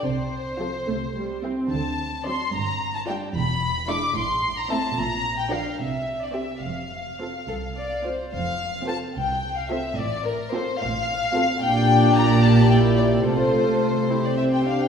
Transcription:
<<
  \new Staff \with { instrumentName = "Violin section" } { \time 6/8 \key f \major \tempo 4. = 73 c''2~ c''8 r8 | a''4 c'''8 bes''8. a''16 g''8 | b''4 d'''8 c'''8. bes''16 a''8 | bes''8. g''16 f''8 e''8. d''16 e''8 |
f''2~ f''8 r8 | f''4 a''8 g''8. f''16 e''8 | d''8 bes'8 c''8 f''4. | g''4 bes''8 a''8 g''8 d''8 |
c''4.~ c''16 d''16 e''16 g''16 f''16 g''16 | }
  \new Staff \with { instrumentName = "Violin section" } { \time 6/8 \key f \major r4 <f' a'>8 r4 <e' g'>8 | r4 <d' d''>8 r4 <f' d''>8 | r4 <e' e''>8 r4 <e' e''>8 | r4 <bes' d''>8 r4 <g' c''>8 |
r4 <a' c''>8 a'8 d''8 c''8 | r4 <a' c''>8 r4 <a' c''>8 | r4 <a' c''>8 r4 <a' c''>8 | <g' d''>2. |
<a' c''>4. <g' c''>4 r8 | }
  \new Staff \with { instrumentName = "Viola section" } { \time 6/8 \key f \major << { r4 c'8 a8 g8 c'8 | r4 c'8 r4 d'8 | r4 d'8 r4 c'8 | r4 d'8 r4 g'8 |
r4 f'8 r4 f'8 | r4 f'8 r4 f'8 | r4 f'8 r4 f'8 | d'2 e'4 |
f'4. e'8 c'8 d'8 | } \\ { r4 f8 r4. | r4 fis8 r4 g8 | r4 gis8 r4 a8 | r4 f8 r4 c'8 |
r4 c'8 r4 c'8 | r4 c'8 r4 c'8 | r4 c'8 r4 c'8 | bes2. |
a4. r4. | } >> }
  \new Staff \with { instrumentName = "Cello section" } { \clef bass \time 6/8 \key f \major c4. c4. | d4. g,4. | e,4. a,4. | bes,4. c4. |
f,4. c,4. | f,4. c,4. | a,4. a,4. | bes,2. |
c2~ c8 r8 | }
  \new Staff \with { instrumentName = "Double bass section" } { \clef bass \time 6/8 \key f \major c,4. c,4. | d,4. g,,4. | e,,4. a,,4. | bes,,4. c,4. |
f,,4. c,4. | f,,4. c,4. | a,,4. a,,4. | bes,,2. |
c,2~ c,8 r8 | }
>>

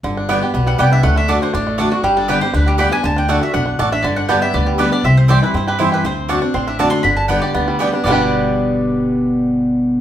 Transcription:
<<
  \new Staff \with { instrumentName = "Mandolin" } { \time 4/4 \key g \major \tempo 4 = 240 r2 r8 fis''8 g''8 e''8 | fis''8 e''8 d''8 c''8 d''4 a'8 fis'8 | g'8 a'8 b'8 c''8 b'8 g'8 b''8 aes''8 | a''8 g''8 fis''8 e''8 fis''4. e''8 |
d''8 fis''8 g''8 e''8 d''8 g'8 b'8 d''8 | e''8 c''8 d''8 b'8 c''8 b'8 g'8 b'8 | c''4. r8 c'''8 e''8 a''8 c'''8 | b''8 a''8 fis''8 d''4. r4 |
d''1~ | d''1 | }
  \new Staff \with { instrumentName = "Mandolin" } { \time 4/4 \key g \major r4 <b g' d'' g''>8 r4. <b g' d'' g''>8 r8 | r4 <a fis' d'' a''>8 r4. <a fis' d'' a''>8 r8 | r4 <b g' d'' g''>8 r4. <b g' d'' g''>8 r8 | r4 <a fis' d'' a''>8 r4. <a fis' d'' a''>8 r8 |
r4 <b g' d'' a''>8 r4. <b g' d'' a''>8 r8 | r4 <c' e' c'' g''>8 r4. <c' e' c'' g''>8 r8 | r4 <c' fis' d'' a''>8 r4. <c' fis' d'' a''>8 r8 | r4 <b g' d'' g''>8 r4. <b g' d'' g''>8 r8 |
<b g' d'' g''>1~ | <b g' d'' g''>1 | }
  \new Staff \with { instrumentName = "Five-string banjo" } { \time 4/4 \key g \major d8 d'8 b8 g'8 b8 g8 b8 d'8 | a8 d'8 a8 d'8 d'8 a8 d'8 d'8 | g8 d'8 g8 g'8 d'8 g8 g'8 d'8 | d8 d'8 a8 d'8 d'8 d'8 a8 d'8 |
d8 d'8 b8 g'8 b8 g8 b8 d'8 | c'4 g'8 e'8 c'8 g'8 e'8 g'8 | c'4 d'8 d'8 c'8 d'8 d'8 d'8 | d4 b8 g'8 b8 g8 b8 d'8 |
<g b d' g'>1~ | <g b d' g'>1 | }
  \new Staff \with { instrumentName = "Steel-string acoustic guitar" } { \time 4/4 \key g \major << { r4 <d g b g'>8 <b g'>8 r2 | r4 <d a d' fis'>4 r4 <d a d' fis'>8 <d' fis'>8 | r4 <d g b g'>8 <b g'>8 r4 <d g b g'>8 <b g'>8 | r4 <d a d' fis'>8 <d' fis'>8 r2 |
r4 <d g b g'>8 <b g'>8 r4 <d g b g'>8 <b g'>8 | r4 <e g c' e'>4 r4 <e g c' e'>4 | r4 <d a c' fis'>8 <c' fis'>8 r4 <d a c' fis'>4 | r4 <d g b g'>4 r4 <d g b g'>8 <b g'>8 |
<g, b, d g b g'>1~ | <g, b, d g b g'>1 | } \\ { g,2 b,4 c4 | d2 a,2 | g,2 d2 | d2 b,4 a,4 |
g,2 d2 | c2 g,2 | d2 a,2 | g,2 d2 |
r1 | r1 | } >> }
  \new Staff \with { instrumentName = "Upright bass" } { \clef bass \time 4/4 \key g \major g,,2 b,,4 c,4 | d,2 a,,2 | g,,2 d,2 | d,2 b,,4 a,,4 |
g,,2 d,2 | c,2 g,2 | d,2 a,,2 | g,,2 d,2 |
g,,1~ | g,,1 | }
>>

